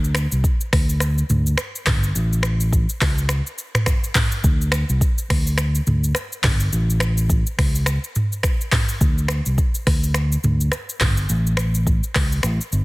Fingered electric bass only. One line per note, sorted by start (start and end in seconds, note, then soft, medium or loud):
0.00 0.26 D2 loud
0.32 0.42 C2 medium
0.73 1.22 D2 medium
1.30 1.54 D2 loud
1.87 2.11 G1 loud
2.15 2.85 A1 loud
3.01 3.40 C#2 loud
4.44 4.83 D2 loud
4.89 5.00 C2 medium
5.30 5.79 D2 medium
5.87 6.11 D2 medium
6.44 6.68 G1 loud
6.73 7.43 A1 loud
7.59 7.97 C#2 loud
9.01 9.40 D2 loud
9.46 9.57 C2 medium
9.87 10.36 D2 medium
10.44 10.68 D2 loud
11.01 11.25 G1 medium
11.30 12.00 A1 loud
12.16 12.40 C#2 medium
12.44 12.58 A1 loud
12.72 12.85 G1 loud